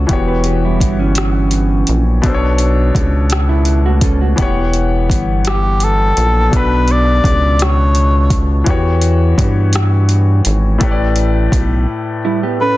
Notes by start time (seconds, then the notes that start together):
0.07 E1 E3 B3 F#4, kick, closed hi-hat
0.11 G4 C#5
0.28 B4
0.44 B3 G4, closed hi-hat
0.65 G3 E4
0.80 G1, kick, closed hi-hat
0.99 E3 C#4
1.15 cross-stick, closed hi-hat
1.51 closed hi-hat
1.87 A#1, closed hi-hat
2.22 B1 B2 B3 D4, kick, closed hi-hat
2.26 A4 C5
2.34 C#5
2.58 closed hi-hat
2.95 C#2, kick, closed hi-hat
3.30 cross-stick, closed hi-hat
3.49 E4
3.65 closed hi-hat
3.86 A3 F#4
4.01 C#4 A4, kick, closed hi-hat
4.21 A3 F#4
4.36 E1 E3 B3 F#5, kick, closed hi-hat
4.41 G4 C#5
4.74 closed hi-hat
5.10 G1, kick, closed hi-hat
5.45 G4, cross-stick, closed hi-hat
5.80 A4, closed hi-hat
6.17 A#1, closed hi-hat
6.50 B1 B2 B3 D4, kick, closed hi-hat
6.55 A4 B4
6.88 D5, closed hi-hat
7.24 C#2, kick, closed hi-hat
7.59 C#5, cross-stick, closed hi-hat
7.95 closed hi-hat
8.30 kick, closed hi-hat
8.64 E2 E3 B3 F#4, kick, closed hi-hat
8.69 G4 C#5
9.02 closed hi-hat
9.38 G2, kick, closed hi-hat
9.73 cross-stick, closed hi-hat
10.09 closed hi-hat
10.45 G#1, closed hi-hat
10.78 A1 A2 A3 G4, kick, closed hi-hat
10.83 B4 C#5
10.91 D5
11.16 closed hi-hat
11.52 B1, kick, closed hi-hat
12.25 G3 E4
12.43 B3 G4
12.61 C#4 A4 B4